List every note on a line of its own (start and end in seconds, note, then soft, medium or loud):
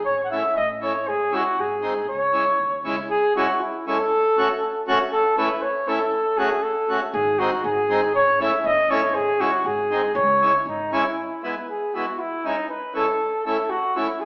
0.05 0.39 A1 medium
0.05 0.23 C#5 medium
0.24 0.32 F#5 medium
0.31 0.43 A3 medium
0.31 0.43 C#4 medium
0.31 0.43 E4 medium
0.31 0.56 E5 medium
0.56 1.07 A1 medium
0.56 0.68 D#5 medium
0.81 0.93 A3 medium
0.81 0.93 C#4 medium
0.81 0.93 E4 medium
0.81 1.09 C#5 medium
1.07 1.40 G#1 medium
1.07 1.36 G#4 medium
1.32 1.43 G#3 medium
1.32 1.43 C#4 medium
1.32 1.43 E4 medium
1.32 1.61 F#4 medium
1.57 2.08 G#1 medium
1.57 2.08 G#4 medium
1.82 1.94 G#3 medium
1.82 1.94 C4 medium
1.82 1.94 D#4 medium
2.08 2.41 C#2 medium
2.08 2.82 C#5 medium
2.33 2.45 G#3 medium
2.33 2.45 C#4 soft
2.33 2.45 E4 medium
2.59 2.83 D#2 medium
2.85 3.07 C#2 medium
2.85 2.96 G#3 medium
2.85 2.96 C#4 medium
2.85 2.96 E4 medium
3.10 3.35 G#4 loud
3.36 3.47 G#3 medium
3.36 3.48 C#4 medium
3.36 3.47 E4 medium
3.36 3.62 F#4 medium
3.61 3.87 E4 medium
3.87 3.98 G#3 medium
3.87 3.98 C#4 medium
3.87 3.98 E4 medium
3.87 4.84 A4 loud
4.38 4.48 A3 medium
4.38 4.48 C#4 medium
4.38 4.48 F#4 medium
4.88 4.99 A3 medium
4.88 4.99 C#4 medium
4.88 4.99 F#4 loud
5.12 5.36 A4 loud
5.37 5.49 A3 medium
5.37 5.49 C#4 medium
5.37 5.49 E4 medium
5.37 5.64 B4 medium
5.62 5.89 C#5 medium
5.88 5.99 A3 medium
5.88 5.99 C#4 medium
5.88 5.99 E4 medium
5.88 6.39 A4 medium
6.37 6.49 A3 medium
6.37 6.49 C#4 medium
6.37 6.50 F#4 medium
6.37 6.64 G#4 medium
6.62 7.01 A4 medium
6.89 7.00 A3 medium
6.89 7.00 C#4 medium
6.89 7.00 F#4 medium
7.13 7.46 G#1 medium
7.13 7.40 G#4 medium
7.39 7.51 G#3 medium
7.39 7.51 C4 medium
7.39 7.51 D#4 medium
7.39 7.63 F#4 medium
7.64 8.14 G#1 medium
7.64 8.11 G#4 medium
7.90 8.01 G#3 medium
7.90 8.01 C4 medium
7.90 8.01 D#4 medium
8.14 8.47 A1 medium
8.14 8.39 C#5 loud
8.40 8.51 A3 medium
8.40 8.51 C#4 medium
8.40 8.51 E4 medium
8.40 8.67 E5 medium
8.64 9.14 G1 medium
8.64 8.92 D#5 loud
8.90 9.01 A3 medium
8.90 9.01 C#4 medium
8.90 9.01 E4 medium
8.90 9.16 C#5 medium
9.14 9.47 G#1 loud
9.14 9.42 G#4 loud
9.40 9.51 G#3 medium
9.40 9.51 C#4 medium
9.40 9.51 E4 medium
9.40 9.68 F#4 medium
9.65 10.16 G#1 medium
9.65 10.15 G#4 medium
9.91 10.02 G#3 medium
9.91 10.02 C4 medium
9.91 10.02 D#4 medium
10.15 10.48 C#2 medium
10.15 10.62 C#5 medium
10.42 10.53 G#3 medium
10.42 10.53 C#4 medium
10.42 10.53 E4 medium
10.66 10.99 G#1 medium
10.66 10.95 D#4 medium
10.92 11.04 G#3 medium
10.92 11.04 C#4 medium
10.92 11.04 E4 medium
10.92 11.46 E4 medium
11.44 11.55 G#3 medium
11.44 11.55 B3 medium
11.44 11.55 E4 medium
11.44 11.68 B4 medium
11.69 11.96 G#4 medium
11.95 12.05 G#3 medium
11.95 12.06 B3 medium
11.95 12.06 E4 medium
11.95 12.21 F#4 medium
12.19 12.47 E4 medium
12.44 12.56 G#3 medium
12.44 12.56 C#4 medium
12.44 12.68 D#4 medium
12.44 12.56 E4 medium
12.69 12.94 B4 medium
12.94 13.06 G#3 medium
12.94 13.06 C#4 medium
12.94 13.06 E4 medium
12.94 13.43 A4 medium
13.46 13.57 A3 medium
13.46 13.57 C#4 medium
13.46 13.57 E4 medium
13.46 13.71 A4 medium
13.70 13.98 F#4 medium
13.96 14.08 A3 medium
13.96 14.08 C#4 medium
13.96 14.07 E4 medium
13.96 14.22 E4 medium
14.20 14.25 G#4 medium